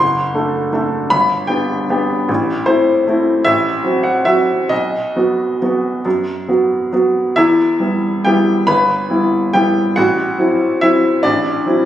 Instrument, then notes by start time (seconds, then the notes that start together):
upright piano
Already playing: F#1 C6
0.34 A3 D4 A4
0.73 A3 D4 A4
1.10 G1 B5
1.47 B3 D4 G4 G5
1.90 B3 D4 G4
2.29 A1
2.66 A3 C4 E4 C5
3.07 A3 C4 E4
3.45 A1 E5
3.83 F#3 C4 F#4
4.03 F#5
4.25 F#3 C4 F#4 E5
4.69 B1 D#5
5.16 F#3 B3 F#4
5.61 F#3 B3 F#4
6.05 F#2
6.48 F#3 B3 F#4
6.92 F#3 B3 F#4
7.36 E2 E4 E5
7.80 G3 B3 E4
8.25 G3 B3 E4 G4 G5
8.67 G1 B4 B5
9.10 G3 B3 E4
9.53 G3 B3 E4 G4 G5
9.96 A1 F#4 F#5
10.38 F#3 C4 E4
10.81 F#3 C4 E4 E5
11.23 A1 D4 D5
11.66 F#3 C4 E4